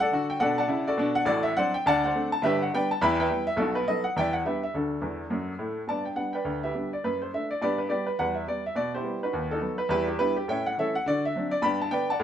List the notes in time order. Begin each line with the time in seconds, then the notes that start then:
0.00 A4 D5 F#5
0.12 D3 F#4
0.30 G5
0.40 B2 D4 A4 D5 F#5
0.58 D5 F#5 A5
0.68 C#3 E4
0.87 F#4 A4 D5
0.98 B2 D4
1.15 F#5
1.25 A1 A2 F#4 A4 D5
1.43 E5
1.56 F#3 C4 D4 C5 D5 F#5
1.74 G5
1.86 D2 D3 D5 F#5 A5
2.04 C5 D5 F#5
2.15 A3 C4 D4
2.32 A5
2.42 G1 G2 G4 B4 E5
2.62 F#5
2.74 G3 B3 D4 B4 D5 G5
2.91 A5
3.01 E2 E3 E5 G5 B5
3.20 B4 E5 G5
3.30 G3 B3 E4
3.47 E5
3.56 B1 B2 D#4 F#4 A4
3.75 B4
3.87 F#3 B3 D#4 A4 B4 D#5
4.04 F#5
4.16 E2 E3 D5 E5 G5
4.33 F#5
4.45 G3 B3 D4 G4 B4 E5
4.63 E5
4.74 D2 D3 D4 F#4 A4
5.01 E2 E3
5.30 F#2 F#3
5.59 A2 A3
5.87 G2 B3 D5 A5
6.05 G5
6.16 G3 B3 D4 F#5
6.33 B4 D5 G5
6.45 D2
6.63 G4 B4 E5
6.74 G3 B3 D4
6.93 D5
7.04 F#2 B4
7.22 C5
7.33 A3 D4 E5
7.51 D5
7.61 G2 B3 G4 B4 D5
7.78 B4
7.89 G3 B3 G4 B4 D5
8.06 B4
8.19 E2 G3 B4 F#5
8.35 E5
8.48 G3 B3 D5
8.66 E5
8.76 B2 D5
8.95 E4 G4 C5
9.04 G3 B3
9.23 D#4 F#4 B4
9.33 D#2
9.51 D#4 F#4 A4
9.61 F#3 B3
9.78 B4
9.89 E2 G3 E4 G4 B4
10.08 G4
10.18 G3 B3 D4 E4 G4 B4
10.37 G4
10.48 A2 C#4 C#5 E5 G5
10.66 F#5
10.78 E3 A3 C#4 A4 C#5 E5
10.95 F#5
11.06 D3 F#4 D5
11.25 E5
11.36 F#3 C4 D4
11.51 D5
11.62 G2 B3 D5 G5 B5
11.82 A5
11.91 D3 B3 D4 B4 D5 G5
12.10 D5 F#5 A5
12.20 A2